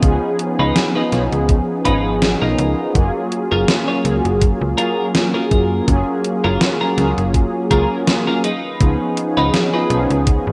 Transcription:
Already playing: B3 C#4 D#4 G#4
0.00 C#2 F3 B3 C#4 D#4, kick, closed hi-hat
0.04 G#4
0.39 closed hi-hat
0.59 C#2 D#4 F4 B4
0.76 snare, closed hi-hat
0.95 D#4 F4 B4
1.12 B1 F3 B3 C#4 D#4 G#4, snare, closed hi-hat
1.32 C#2, closed hi-hat
1.49 muted clean electric guitar stroke, kick, closed hi-hat
1.85 G#1 F3 B3 C#4 D#4 F4 G#4 B4, kick, closed hi-hat
2.22 snare, closed hi-hat
2.42 B1 D#4 F4 A#4
2.59 C#2, closed hi-hat
2.94 F#1 F#3 A#3 C#4 F4 G#4, kick, closed hi-hat
3.32 closed hi-hat
3.52 F#1 F4 G#4 A#4
3.68 snare, closed hi-hat
3.88 F4 G#4 C#5
4.04 C#2 F#3 A#3 C#4 F4 G#4, closed hi-hat
4.25 F#1, closed hi-hat
4.41 muted clean electric guitar stroke, kick, closed hi-hat
4.61 C#2
4.77 F#3 A#3 C#4 F4 G#4 A#4, closed hi-hat
5.15 snare, closed hi-hat
5.34 F4 G#4 A#4
5.51 F#2, kick, closed hi-hat
5.87 F#1 F#3 A#3 C#4 F4 G#4, kick, closed hi-hat
6.25 closed hi-hat
6.44 F#1 F4 G#4 A#4
6.61 snare, closed hi-hat
6.81 F4 G#4 A#4
6.97 C#2 F#3 A#3 C#4 F4 G#4, snare, closed hi-hat
7.18 F#1, closed hi-hat
7.34 muted clean electric guitar stroke, kick, closed hi-hat
7.70 C#2 F#3 A#3 C#4 F4 G#4 A#4, kick, closed hi-hat
8.07 snare, closed hi-hat
8.27 F4 G#4 A#4
8.44 D#4 F4 B4, closed hi-hat
8.79 C#2 F3 B3 C#4 D#4 G#4, kick, closed hi-hat
9.17 closed hi-hat
9.37 C#2 D#4 F4 B4
9.54 snare, closed hi-hat
9.74 D#4 F4 B4
9.89 B1 F3 B3 C#4 D#4 G#4, closed hi-hat
10.10 C#2, closed hi-hat
10.27 muted clean electric guitar stroke, kick, closed hi-hat
10.47 G#1

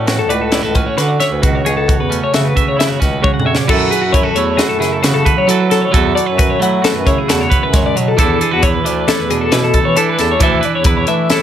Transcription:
Already playing: A2 A3 C#4 E5
0.06 F#4 B4, snare, closed hi-hat
0.19 A4
0.29 C#2 A2 B4 D5, closed hi-hat
0.41 A4
0.52 E4 D5, snare, closed hi-hat
0.63 C#2 F#4 A4
0.75 C#4 B4, kick, closed hi-hat
0.86 C#5
0.97 D3 F#4 B4, snare, closed hi-hat
1.08 D5
1.20 C#5 E5, snare, closed hi-hat
1.31 D2 B4
1.42 C#2 C#3 F#4, kick, closed hi-hat
1.55 C#5
1.65 C#2 G#4 C#5, closed hi-hat
1.77 A4
1.88 F#4, kick, closed hi-hat
1.99 E2 B4
2.10 A3 C#4, closed hi-hat
2.24 C#5
2.32 C#3 F#4 E5, snare, closed hi-hat
2.45 B4
2.55 C#3 E5, kick, closed hi-hat
2.66 C#3 C#5
2.77 E4 E5, closed hi-hat
2.81 snare
2.87 F#4 C#5
3.00 C#2 C#4 B4, kick, snare, closed hi-hat
3.22 C#3 F#4 C#5, kick, high tom
3.34 F2 F#5
3.40 mid tom
3.46 C#5 E5
3.55 D5, snare
3.68 F#2 F#3 E4 F#4 A4, kick, crash
3.91 G#4 B4, closed hi-hat
4.02 F#2 F#4
4.13 E4 C#5, kick, closed hi-hat
4.23 F#4 A4
4.36 E2 A3 E4 C#5, closed hi-hat
4.57 F#4 G#4, snare, closed hi-hat
4.69 F#2 A4
4.80 C#3 E4 G#4, snare, closed hi-hat
4.92 A4
5.03 C#3 F#4 B4, snare, closed hi-hat
5.14 A4
5.25 B4, kick, closed hi-hat
5.37 F#3 C#5
5.47 F#3 E4 F#4 A4, closed hi-hat
5.60 B4
5.70 A4, snare, closed hi-hat
5.82 C#5
5.91 E2 F#3 E4 F#4 A4 E5, kick, closed hi-hat
6.15 A4 D5, closed hi-hat
6.26 F#2 B4 C#5
6.38 F#4 B4, kick, closed hi-hat
6.50 C#5
6.60 F#3 A3 E4 F#5, closed hi-hat
6.82 F#4 A4, snare, closed hi-hat
6.95 F#2 B4
7.06 C#3 E4 C#5, kick, closed hi-hat
7.18 G#4
7.28 E2 F#4 A4, snare, closed hi-hat
7.41 C#5
7.50 B4, kick, closed hi-hat
7.62 F#2 B4
7.73 G#3 C#5, kick, snare, closed hi-hat
7.86 D5
7.96 B2 F#3 C#5, closed hi-hat
8.08 A4
8.17 E2 E3 D4 E4 A4, kick, closed hi-hat
8.41 G#4 A4, closed hi-hat
8.51 E2 F#4 B4
8.63 E4 C#5, kick, closed hi-hat
8.74 B4
8.84 D2 A3 D4 D5, closed hi-hat
9.08 E4 A4, snare, closed hi-hat
9.18 E2 B4
9.30 B2 D4 G#4, closed hi-hat
9.41 A4
9.52 B2 E4 B4, snare, closed hi-hat
9.64 A4
9.74 A4, kick, closed hi-hat
9.85 E3 C#5
9.96 E3 D4 E4 A4, closed hi-hat
10.10 B4
10.19 E2 A4, snare, closed hi-hat
10.31 C#5
10.40 D2 E3 D4 E4 A4 E5, kick, closed hi-hat
10.61 B4, closed hi-hat
10.65 D5
10.75 E2 C#5
10.84 E4 B4, kick, closed hi-hat
10.97 C#5
11.07 E3 A3 D4 E5, closed hi-hat
11.30 E4 A4, snare, closed hi-hat

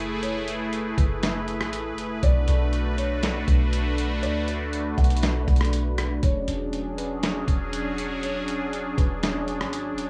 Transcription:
Already playing: F#1 A3 E4 G#4 B4
0.22 C#5, closed hi-hat
0.48 closed hi-hat
0.73 closed hi-hat
0.98 F#1 B4, kick, closed hi-hat
1.23 snare, closed hi-hat
1.48 closed hi-hat
1.60 A1, cross-stick
1.73 closed hi-hat
1.92 F#1
1.98 closed hi-hat
2.23 B1 A3 D4 F#4 D5, kick, closed hi-hat
2.48 B1, closed hi-hat
2.73 closed hi-hat
2.97 C#5, closed hi-hat
3.23 snare, closed hi-hat
3.48 B1, kick, closed hi-hat
3.73 closed hi-hat
3.98 closed hi-hat
4.23 D2 D5, closed hi-hat
4.48 closed hi-hat
4.73 closed hi-hat
4.97 B1 F#5, kick, closed hi-hat
5.04 closed hi-hat
5.10 closed hi-hat
5.17 closed hi-hat
5.23 snare, closed hi-hat
5.48 B1, kick, closed hi-hat
5.56 closed hi-hat
5.61 cross-stick, closed hi-hat
5.73 closed hi-hat
5.98 cross-stick, closed hi-hat
6.23 E1 F#3 C#4 D4 G#4 C#5, kick, closed hi-hat
6.48 E1, closed hi-hat
6.73 closed hi-hat
6.98 B4, closed hi-hat
7.23 snare, closed hi-hat
7.48 E1, kick, closed hi-hat
7.73 closed hi-hat
7.98 closed hi-hat
8.22 C#5, closed hi-hat
8.48 closed hi-hat
8.73 closed hi-hat
8.98 E1 B4, kick, closed hi-hat
9.23 snare, closed hi-hat
9.48 closed hi-hat
9.61 G#1, cross-stick
9.73 closed hi-hat
9.92 E1
9.98 closed hi-hat

